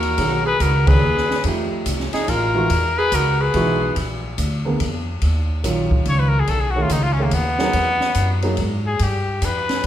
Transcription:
Already playing: D#2 F#4 A#4
0.03 ride
0.18 B1 D#3 A#3 C#4 G#4, kick, ride
0.46 G#4 B4
0.60 C#2 F#4 A#4, kick, hi-hat pedal, ride
0.86 D#3 A#3 C#4 G#4 B4, kick, ride
1.02 D#2
1.17 snare
1.30 snare
1.44 F2 F3 A3 D#4 G4, kick, ride
1.86 C2, kick, hi-hat pedal, ride
2.00 snare
2.13 D#4 G#4, muted upright bass stroke, snare, ride
2.28 A1 F4 A#4, kick, ride
2.54 E3 G#3 D#4 F#4
2.70 E2, kick, ride
2.98 G#4 B4
3.12 C#2 F#4 A#4, kick, hi-hat pedal, ride
3.41 G#4 B4
3.54 B1 E3 G#3 D#4 F#4, kick, ride
3.96 A#1, kick, ride
4.38 D2, kick, hi-hat pedal, ride
4.65 D3 A#3 B3 G#4
4.80 F2, kick, ride
5.22 D#2, kick, ride
5.63 A#1 D#3 F#3 C#4 F4, kick, hi-hat pedal, ride
5.91 kick
6.05 C#2 C#5, kick, ride
6.20 B4
6.29 A#4
6.40 G#4
6.47 B1 A4, kick, ride
6.60 G#4
6.71 F#4
6.76 D#3 A3 C#4 G#4
6.82 F4
6.89 C#2 D#4, kick, hi-hat pedal, ride
7.03 F4
7.13 C#4
7.18 D#3 A3 C#4 G#4
7.23 A#3
7.31 D#2 B3, kick, ride
7.58 F#3 A#3 D#4 G#4, snare
7.73 E2, kick, ride
8.01 snare
8.15 F#2, kick, hi-hat pedal, ride
8.42 F#3 A#3 D#4 G#4, ride
8.57 G#2, kick, ride
8.87 G#4
8.99 G2 G4, kick, ride
9.42 F2 B4, kick, hi-hat pedal, ride
9.69 snare, ride

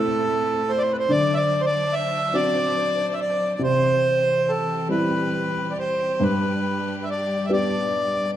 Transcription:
Already playing: C3 A3 C4 E4 A4
0.70 C5
0.78 C5 D5
0.93 B4
0.99 C5
1.09 D3 F#3 D4 C5 D5
1.34 D5 E5
1.61 C5
1.66 D5
1.93 E5
2.33 C4 D4 F#4 D5
3.14 E5
3.21 D5
3.55 D5
3.59 C3 E3 C4 G4
3.64 C5
4.49 A4
4.89 G3 C4 E4 B4
5.71 D5
5.79 C5
6.20 G2 G3 D4 B4
7.03 E5
7.11 D5
7.45 B3 D4 E5
7.50 G4 D5

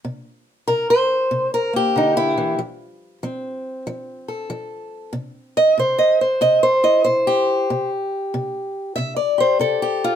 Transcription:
0.05 C3
0.68 C3 A#4
0.90 C5
1.31 C3
1.54 A#4
1.73 A#3 G4
1.96 D3 D#4
2.17 E4
2.38 E3
2.59 F3
3.23 F3 C4
3.87 F3
4.28 A4
4.50 F3
5.13 C3
5.57 D#5
5.78 C3 C5
5.99 D#5
6.21 C5
6.41 C3 D#5
6.63 C5
6.83 E4 D#5
7.04 C3 C5
7.27 G4
7.70 C3
8.34 C3
8.96 C3 E5
9.16 D5
9.38 G4 C5
9.59 C3 A4
9.82 G4
10.04 F4

